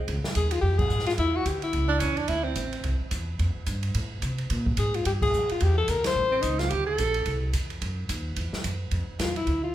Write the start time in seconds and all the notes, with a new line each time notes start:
0.08 C#2, kick, ride
0.24 muted upright bass stroke, snare
0.35 D#2 G#4, kick, hi-hat pedal, ride
0.51 F4, ride
0.61 F2 G4, kick
0.79 G#4, kick, crash
0.90 G#2, hi-hat pedal
0.99 snare
1.06 F4, snare, ride
1.18 E2 E4, kick, ride
1.36 F#4
1.45 D2 G4, kick, hi-hat pedal, ride
1.62 E4, ride
1.73 C#2, kick, ride
1.88 D4
1.99 E2 C#4, kick, hi-hat pedal, ride
2.17 D4, ride
2.28 D2 E4, kick, ride
2.44 C4
2.56 A1, kick, hi-hat pedal, ride
2.73 ride
2.84 C2, kick, ride
3.00 muted upright bass stroke
3.11 E2, kick, hi-hat pedal, ride
3.39 F2, kick, ride
3.56 muted upright bass stroke
3.66 G2, kick, hi-hat pedal, ride
3.83 ride
3.94 A2, kick, ride
4.22 C3, kick, hi-hat pedal, ride
4.38 ride
4.50 A#2, kick, ride
4.66 kick
4.77 G#2 G#4, kick, hi-hat pedal, ride
4.94 F4, ride
5.05 G2 G4, kick, ride
5.22 G#4, kick, crash
5.33 F2, hi-hat pedal
5.49 F4, muted upright bass stroke, ride
5.60 E2 G4, kick, ride
5.78 A4
5.88 D2 A#4, kick, hi-hat pedal, ride
6.04 C5, snare, ride
6.16 A1, kick
6.31 C4
6.42 C#2 D#4, kick, hi-hat pedal, ride
6.59 F4, snare, ride
6.69 D2 G4, kick, ride
6.86 A4
6.98 A#1, kick, hi-hat pedal, ride
7.14 ride
7.26 C2, kick, ride
7.53 E2, kick, hi-hat pedal, ride
7.70 ride
7.81 F#2, kick, ride
8.09 D#2, kick, hi-hat pedal, ride
8.36 E2, kick, ride
8.52 muted upright bass stroke, snare
8.64 F#2, kick, hi-hat pedal, ride
8.91 F2, kick, ride
9.08 muted upright bass stroke
9.19 E2 F4, kick, snare, hi-hat pedal, ride
9.36 E4, ride
9.47 D2, kick, ride
9.64 F4